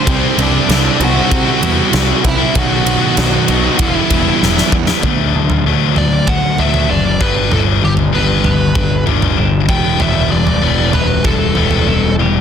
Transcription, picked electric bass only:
0.07 C2
0.38 C2
0.69 C2
1.00 C2
1.31 C3
1.62 E2
1.93 C2
2.24 C2
2.55 B1
3.17 B1
3.49 B1
3.79 E1
4.10 E1
4.43 E1
4.72 E2
5.03 D2
5.35 D2
5.66 D2
6.28 D2
6.60 D2
6.90 F#1
7.21 G1
7.53 G1
7.84 G1
8.14 G1
8.75 G1
9.07 G1
9.38 G1
9.68 E1
10.00 E1
10.31 E1
10.62 E1
11.25 E1
11.56 E1
11.87 E1
12.18 E1

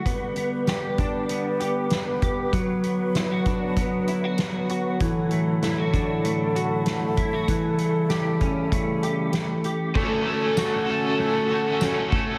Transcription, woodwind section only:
Already playing: D3
0.06 G3 B3 G4 B4
2.53 F#3 F#4
5.01 A2 D3 A3 E4 A4
7.48 C#3 G3
9.95 D3 A3 C#4 F#4 A4

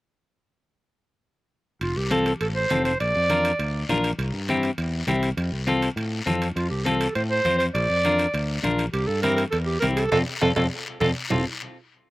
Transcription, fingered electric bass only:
1.81 F1
1.96 C2
2.41 A1
2.71 F1
3.01 A#1
3.16 F2
3.59 D2
3.89 A#1
4.18 C2
4.33 G2
4.78 E2
5.07 C2
5.37 F2
5.52 C2
5.96 A2
6.27 F2
6.56 F2
6.71 C2
7.15 A2
7.45 F2
7.74 A#1
7.89 F2
8.34 D2
8.63 A#1
8.93 C2
9.08 G2
9.53 E2
9.83 C2
10.12 F2
10.42 F2
10.56 F2
11.01 F2
11.31 F1

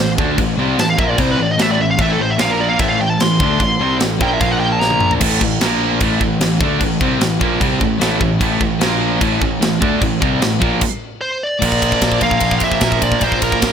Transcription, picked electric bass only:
Already playing: A1
0.18 D2
0.38 A1
0.58 C2
0.78 A1
0.98 A#1
1.18 C2
1.39 A1
1.60 A1
1.80 A1
1.99 A1
2.20 A1
2.40 A#1
2.79 A1
3.00 A1
3.19 A1
3.40 D2
3.60 A1
3.79 C2
3.99 A1
4.21 A#1
4.41 A#1
5.21 A1
5.41 A1
5.61 A#1
6.01 A1
6.21 A1
6.41 A1
6.60 D2
6.80 A1
7.01 C2
7.20 A1
7.41 A#1
7.61 C2
7.80 A1
8.00 A1
8.21 A1
8.41 A1
8.60 A1
8.80 A#1
9.21 A1
9.41 A1
9.61 A1
9.82 D2
10.02 A1
10.22 C2
10.42 A1
10.61 A#1
11.62 A#1
12.01 A#1
12.21 A#1
12.41 A#1
12.61 A#1
12.82 A#1
13.22 A#1
13.62 A#1

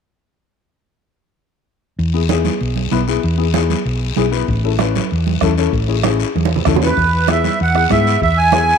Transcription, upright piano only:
2.14 B3 E4 G#4
2.29 B3 E4 G#4
2.92 B3 E4 B4
3.08 B3 E4 G#4
3.38 B3 E4 G#4
3.53 B3 E4 G#4
4.17 B3 E4 G#4
4.31 B3 E4 B4
4.64 C#4 E4 A4
4.79 C#4 E4 B4
5.42 C#4 E4 A4
5.58 C#4 E4 A4
5.88 C#4 E4 G#4
6.04 C#4 E4 G#4
6.66 C#4 E4 A4
6.82 C#4 E4 B4
7.28 B3 E4 G#4
7.74 B3 E4 G#4
7.89 B3 E4 G#4
8.53 B3 E4 G#4

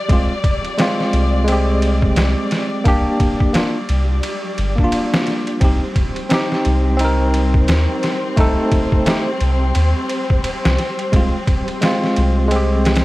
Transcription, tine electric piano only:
0.09 G#3 C4
0.13 F4
0.77 G#3 C4 F4
1.44 G#3 C4
1.52 G4
2.84 A#3 D4 G4
3.53 A#3 D4
3.57 F4
4.76 A#3
4.80 D4
4.84 F4
5.60 C4 D#4
5.64 G4
6.29 C4 D#4
6.34 G4
6.97 C4 D#4
7.05 A#4
8.36 A3 D#4 A4
9.06 A3 D#4 G4
11.12 G#3 C4
11.16 F4
11.81 G#3 C4
11.85 F4
12.48 G#3
12.52 C4 G4

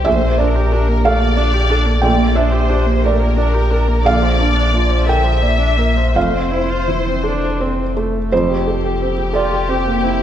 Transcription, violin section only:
0.07 C5
0.39 A#4
1.05 D5
2.06 D5
2.36 C5
3.04 A#4
4.03 D5
5.09 E5
6.15 C5
8.33 G4

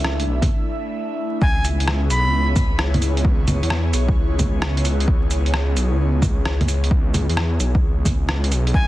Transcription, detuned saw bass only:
Already playing: C#2
0.27 B1
0.42 C#2
1.42 C#2
2.10 B1
2.25 C#2
3.63 E2
3.93 B1
4.08 C#2
5.08 C#2
5.76 B1
5.92 C#2
7.29 E2
7.60 B1
7.75 C#2
8.51 B1
8.74 C#2

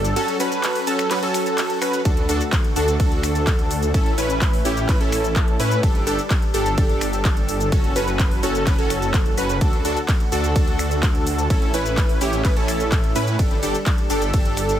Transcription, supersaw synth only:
Already playing: D4 G4 A4
0.16 C#4 F#4 A4
0.40 C#4 F#4 B4
0.87 C#4 F#4 A4
1.11 C#4 F#4 B4
1.23 C#4 F#4 A4
1.82 C#4 F#4 B4
2.05 D4 F#4 A4
2.29 D4 F#4 A4
2.76 D4 F#4 A4
3.00 D4 F#4 A4
3.94 C#4 E4 A4
4.18 C#4 E4 B4
4.65 C#4 E4 G4
4.89 C#4 E4 B4
5.01 C#4 E4 A4
5.60 C#4 E4 B4
5.83 D4 G4 A4
6.07 D4 G4 A4
6.54 D4 G4 A4
6.78 D4 G4 A4
7.72 C#4 F#4 A4
7.96 C#4 F#4 B4
8.43 C#4 F#4 A4
8.67 F#4 B4
8.78 C#4 F#4 A4
9.38 C#4 F#4 B4
9.61 D4 F#4 A4
9.85 D4 F#4 A4
10.32 D4 F#4 A4
10.56 D4 F#4 A4
11.50 C#4 E4 A4
11.74 C#4 E4 B4
12.21 C#4 E4 G4
12.45 C#4 E4 B4
12.57 C#4 E4 A4
13.16 C#4 E4 B4
13.39 D4 G4 A4
13.63 D4 G4 A4
14.10 D4 G4 A4
14.34 D4 G4 A4

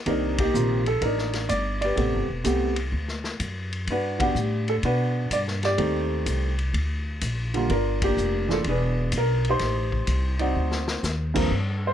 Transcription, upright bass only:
0.06 C2
0.54 A#1
1.01 A1
1.49 G1
1.97 A1
2.13 G1
2.29 E1
2.45 C2
2.92 D2
3.40 F#2
3.87 G2
4.35 A2
4.83 B2
5.30 G2
5.78 D#2
6.26 C2
6.73 D2
7.22 A#1
7.69 G1
8.17 F1
8.64 E1
9.12 B1
9.60 A1
10.07 C2
10.55 D2
11.03 D#2
11.51 G2

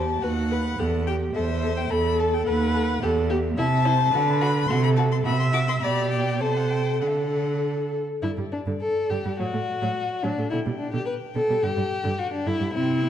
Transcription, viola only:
Already playing: G4
0.23 F#4
0.52 B4
0.79 A4
1.07 G4
1.35 C5
1.91 A4
2.47 B4
3.03 A4
3.30 G4
3.58 E5
3.85 C5
4.13 B4
4.70 A4
5.26 E5
5.83 D5
6.41 C5
7.02 A4
8.23 D3
8.38 G3
8.67 D3
9.11 D3
9.25 G3
9.39 F#3
9.53 A3
9.82 F#3
10.24 F#3
10.38 A3
10.52 D3
10.66 G3
10.93 D3
11.35 D3
11.49 G3
11.63 D3
11.77 G3
12.04 D3
12.46 D3
12.60 G3
12.74 C4
13.01 B3

